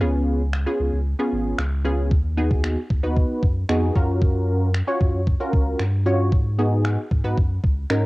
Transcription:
0.01 C#2 B3 C#4 F4 G#4
0.53 finger snap
0.66 B3 C#4 F4 G#4
0.80 C#2
0.93 C#2
1.19 B3 C#4 F4 G#4
1.32 G#1
1.58 C#2, finger snap
1.85 B3 C#4 F4 G#4
2.11 D#2, kick
2.37 B3 D#4 F#4 G#4
2.51 kick
2.64 finger snap
2.90 D#2, kick
3.03 D#2 B3 D#4 F#4 B4
3.17 kick
3.43 F#2, kick
3.69 F2 B3 D#4 F#4 G#4, finger snap
3.95 F#2 C#4 F4 F#4 A#4, kick
4.22 kick
4.74 finger snap
4.87 C#4 F4 F#4 C#5
5.01 F#2, kick
5.14 F#2
5.27 kick
5.40 C#4 F4 F#4 A#4
5.53 C#2, kick
5.79 G2, finger snap
6.06 C#4 F4 F#4 C#5
6.32 G#2, kick
6.58 B3 D#4 F#4 G#4
6.85 finger snap
7.11 G#2, kick
7.24 G#2 B3 D#4 F#4 B4
7.38 F#2, kick
7.64 C#2, kick
7.90 G#2 C#4 D#4 F#4 A#4, finger snap

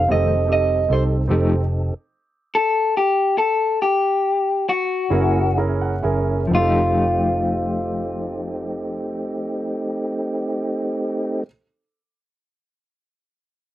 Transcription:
Already playing: G3 C4 D#4 A4 F5
0.08 F1 A3 C4 D#4 G4 A4 D#5
0.13 D#3
0.47 C4 D#4 G4 A4
0.53 D#5
0.89 C2 C4 D#4 G4 A4
0.93 C5
1.28 F1 F3 A3 C4 D#4 G4 A4
2.55 A4
2.97 G4
3.38 A4
3.82 G4
4.69 F#4
5.10 F#1 A#3 C#4 E4 G#4 A#4
5.57 C#4 E4 G#4 A#4 A#5
5.81 F#5
6.02 F#1 C#4 E4 G#4 A#4 E5
6.47 F1 F3 C4 D#4
6.52 A3 C4 D#4 F4 G4 A4
6.61 D#4
6.66 G4

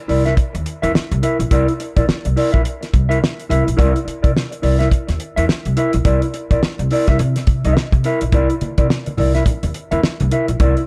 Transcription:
0.08 C2 E4 A#4 D5, open hi-hat
0.25 E4 A#4 E5, snare, closed hi-hat
0.36 muted clean electric guitar stroke, muted upright bass stroke, kick, closed hi-hat
0.53 D#2, muted clean electric guitar stroke, closed hi-hat
0.66 closed hi-hat
0.82 E2 E4 A#4 E5, closed hi-hat
0.95 muted upright bass stroke, snare
1.11 C2, closed hi-hat
1.23 E4 A#4 E5, closed hi-hat
1.39 A#1, muted clean electric guitar stroke, closed hi-hat
1.51 C2 E4 A#4 D5, kick, closed hi-hat
1.68 muted clean electric guitar stroke, closed hi-hat
1.80 muted clean electric guitar stroke, closed hi-hat
1.96 A#1 E4 A#4 D5, kick, closed hi-hat
2.07 muted clean electric guitar stroke, muted upright bass stroke, snare
2.25 C2, muted clean electric guitar stroke, closed hi-hat
2.36 E4 A#4 D5, open hi-hat
2.52 A#1 E4 A#4 E5, kick
2.64 muted clean electric guitar stroke, closed hi-hat
2.81 muted clean electric guitar stroke, snare, closed hi-hat
2.93 C2, kick, closed hi-hat
3.09 E4 A#4 E5, closed hi-hat
3.21 muted clean electric guitar stroke, snare
3.40 closed hi-hat
3.49 C2 E4 A#4 E5, closed hi-hat
3.66 A#1, muted clean electric guitar stroke, closed hi-hat
3.77 C2 E4 A#4 D5, kick, closed hi-hat
3.94 muted clean electric guitar stroke, closed hi-hat
4.05 muted clean electric guitar stroke, muted upright bass stroke, closed hi-hat
4.22 C3 E4 A#4 D5, kick, closed hi-hat
4.33 muted clean electric guitar stroke, snare
4.51 muted clean electric guitar stroke, closed hi-hat
4.62 C2 E4 A#4 D5, open hi-hat
4.79 E4 A#4 E5, snare, closed hi-hat
4.91 muted clean electric guitar stroke, kick, closed hi-hat
5.07 D#2, muted clean electric guitar stroke, snare, closed hi-hat
5.20 closed hi-hat
5.36 E2 E4 A#4 E5, closed hi-hat
5.48 muted clean electric guitar stroke, muted upright bass stroke, snare
5.65 C2, closed hi-hat
5.77 E4 A#4 E5, closed hi-hat
5.93 A#1, muted clean electric guitar stroke, closed hi-hat
6.05 C2 E4 A#4 D5, kick, closed hi-hat
6.22 muted clean electric guitar stroke, closed hi-hat
6.34 muted clean electric guitar stroke, closed hi-hat
6.51 A#1 E4 A#4 D5, kick, closed hi-hat
6.62 muted upright bass stroke, snare
6.79 C2, muted clean electric guitar stroke, closed hi-hat
6.91 E4 A#4 D5, open hi-hat
7.07 C2 E4 A#4 E5, kick, snare, closed hi-hat
7.19 C3, muted clean electric guitar stroke, closed hi-hat
7.36 muted clean electric guitar stroke, snare, closed hi-hat
7.47 C3, kick, closed hi-hat
7.64 C2 E4 A#4 E5, closed hi-hat
7.77 muted clean electric guitar stroke, snare
7.92 C3, kick, closed hi-hat
8.04 E4 A#4 E5, closed hi-hat
8.21 A#1, muted clean electric guitar stroke, closed hi-hat
8.32 C2 E4 A#4 D5, kick, closed hi-hat, low conga
8.50 muted clean electric guitar stroke, closed hi-hat
8.61 muted upright bass stroke, muted clean electric guitar stroke, closed hi-hat, high conga
8.78 C3 E4 A#4 D5, kick, closed hi-hat
8.89 muted clean electric guitar stroke, snare, muted conga
9.06 muted clean electric guitar stroke, closed hi-hat, high conga
9.17 C2 E4 A#4 D5, open hi-hat, high conga, low conga
9.35 E4 A#4 E5, snare, closed hi-hat
9.46 muted clean electric guitar stroke, muted upright bass stroke, kick, closed hi-hat, muted conga, low conga
9.63 D#2, muted clean electric guitar stroke, closed hi-hat, muted conga
9.74 closed hi-hat
9.91 E2 E4 A#4 E5, closed hi-hat, high conga
10.03 muted clean electric guitar stroke, muted upright bass stroke, snare
10.20 C2, closed hi-hat, high conga
10.31 E4 A#4 E5, closed hi-hat
10.48 A#1, muted clean electric guitar stroke, closed hi-hat
10.60 C2 E4 A#4 D5, kick, closed hi-hat, muted conga, low conga
10.77 muted clean electric guitar stroke, closed hi-hat, muted conga

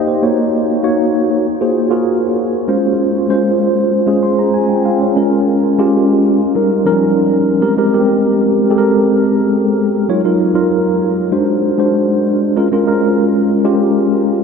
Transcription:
Already playing: A#3 D#4 G4 C5 D5 D#5 F5 G5
0.08 C5
0.22 A#3 D#4 F#4 C#5
0.83 A#3 D#4 F#4 C#5
1.61 A#3 F4 F#4 G#4 C5
1.90 A#3 F4 F#4 G#4 A#4
2.68 G#3 C#4 F4 C5
3.29 G#3 C#4 F4 C5
4.06 G#3 C#4 F4 G#4
4.23 C6
4.39 A#5
4.54 G#5
4.69 G5
4.85 F5
5.01 C#5
5.16 G#3 C#4 F4 A#4
5.78 G#3 C#4 F4 G4
6.55 G3 C#4 D#4 A#4
6.85 F3 C#4 D#4 A#4
6.92 G3
7.61 G#3 C4 G4 A#4
7.77 G#3 C4 G4 A#4
7.93 G#3 B3 G4 A#4
8.00 C4
8.70 G#3 C4 G4 A4
8.78 A#4
10.09 F#3 D#4 F4 C#5
10.24 F#3 D#4 F4 A#4
10.54 F#3 D#4 F4 A#4
11.32 G#3 D4 F#4 C5
11.78 G#3 D4 F#4 C5
12.56 G#3 C#4 F4 A#4
12.72 G#3 C#4 F4 A#4
12.87 G#3 C#4 F4 A#4
13.64 G#3 C#4 F4 G4

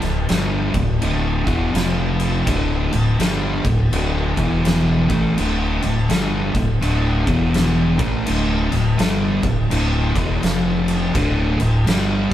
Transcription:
0.02 D1 D2 A2, snare, crash
0.29 G1 G2 D3 G3, snare, crash
0.74 D1 D2 A2, kick, crash
1.01 D1 D2 A2 D3, crash
1.46 E1 E2 B2 E3, kick, crash
1.73 F1 F2 C3 F3, snare, crash
2.20 crash
2.47 D1 D2 A2 D3, kick, crash
2.92 D1 D2 A2, crash
3.19 G1 G2 D3 G3, snare, crash
3.64 D1 D2 A2, kick, crash
3.92 D1 D2 A2 D3, crash
4.37 E1 E2 B2 E3, kick, crash
4.65 snare, crash
5.09 A1 A2 E3 A3, kick, crash
5.38 D1 D2 A2 D3, crash
5.82 D1 D2 A2, crash
6.09 G1 G2 D3 G3, snare, crash
6.54 D1 D2 A2, kick, snare, crash
6.81 D1 D2 A2 D3, crash
7.26 E1 E2 B2 E3, kick, crash
7.54 snare, crash
7.99 A1 A2 E3 A3, kick, crash
8.26 D1 D2 A2 D3, crash
8.70 D1 D2 A2, snare, crash
8.98 G1 G2 D3 G3, snare, crash
9.43 D1 D2 A2, kick, crash
9.70 D1 D2 A2 D3, crash
10.16 E1 E2 B2 E3, kick, crash
10.43 F1 F2 C3 F3, snare, crash
10.88 crash
11.14 D1 D2 A2 D3, kick, crash
11.60 D1 D2 A2, crash
11.87 G1 G2 D3 G3, snare, crash

